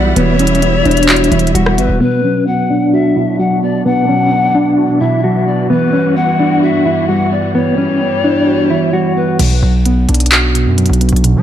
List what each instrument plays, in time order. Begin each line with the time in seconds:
Already playing: 808-style bass B1, synth keys E3 G3 B3 E4 F#4, string section G3 E4 F#5, pan flute D5
0.16 808-style bass E1, synth keys E3, clean electric guitar B3, pan flute C#5, string section E5, closed hi-hat
0.39 synth keys G3, clean electric guitar C#4, closed hi-hat
0.47 closed hi-hat
0.55 closed hi-hat
0.62 synth keys B3, closed hi-hat
0.85 808-style bass E1, clean electric guitar D4, synth keys E4, closed hi-hat
0.91 closed hi-hat
0.97 closed hi-hat
1.03 closed hi-hat
1.09 synth keys F#4, clap, closed hi-hat
1.16 closed hi-hat
1.24 closed hi-hat
1.32 808-style bass E1, synth keys E3, clean electric guitar E4, closed hi-hat
1.39 closed hi-hat
1.47 closed hi-hat
1.55 808-style bass E1, synth keys G3, clean electric guitar F#4, closed hi-hat
1.66 cross-stick
1.78 808-style bass G1, synth keys B3, pan flute B4, closed hi-hat
1.89 808-style bass E1
2.00 string section B2 F#3 D4, synth keys B2, clean electric guitar B3, pan flute B4
2.24 synth keys F#3, clean electric guitar C#4
2.47 synth keys B3, pan flute F#5
2.70 clean electric guitar D4, synth keys D4
2.93 synth keys F#4, pan flute E5
3.16 synth keys B2, clean electric guitar E4
3.39 synth keys F#3, clean electric guitar F#4, pan flute F#5
3.62 synth keys B3, pan flute D5
3.85 synth keys B2, string section E3, clean electric guitar B3, pan flute F#5
4.09 synth keys F#3, clean electric guitar C#4
4.32 synth keys B3
4.55 synth keys D4, clean electric guitar D4
4.78 synth keys F#4
5.01 synth keys B2, clean electric guitar E4, pan flute E5
5.24 synth keys F#3, clean electric guitar F#4
5.47 synth keys B3, pan flute D5
5.70 string section G2 F#4, synth keys E3, clean electric guitar B3, pan flute B4
5.93 synth keys G3, clean electric guitar C#4
6.16 synth keys B3, pan flute F#5
6.39 clean electric guitar D4, synth keys E4
6.62 synth keys F#4, pan flute E5
6.85 synth keys E3, clean electric guitar E4
7.09 synth keys G3, clean electric guitar F#4, pan flute F#5
7.32 synth keys B3, pan flute D5
7.55 synth keys E3, string section G3, clean electric guitar B3, pan flute C#5
7.78 synth keys G3, clean electric guitar C#4
8.01 synth keys B3
8.24 clean electric guitar D4, synth keys E4
8.47 synth keys F#4
8.70 synth keys E3, clean electric guitar E4
8.93 synth keys G3, clean electric guitar F#4
9.16 synth keys B3, pan flute B4
9.39 808-style bass B1, synth keys B2, closed hi-hat, crash
9.62 808-style bass B1, synth keys F#3
9.85 synth keys B3, closed hi-hat
10.09 808-style bass B1, synth keys D4, closed hi-hat
10.14 closed hi-hat
10.20 closed hi-hat
10.26 closed hi-hat
10.32 synth keys F#4, clap, closed hi-hat
10.55 synth keys B2, closed hi-hat
10.66 808-style bass F#2
10.78 synth keys F#3, closed hi-hat
10.86 808-style bass B1, closed hi-hat
10.93 closed hi-hat
11.01 synth keys B3, closed hi-hat
11.09 808-style bass B1, closed hi-hat
11.16 closed hi-hat
11.24 synth keys B2, closed hi-hat
11.36 808-style bass F#3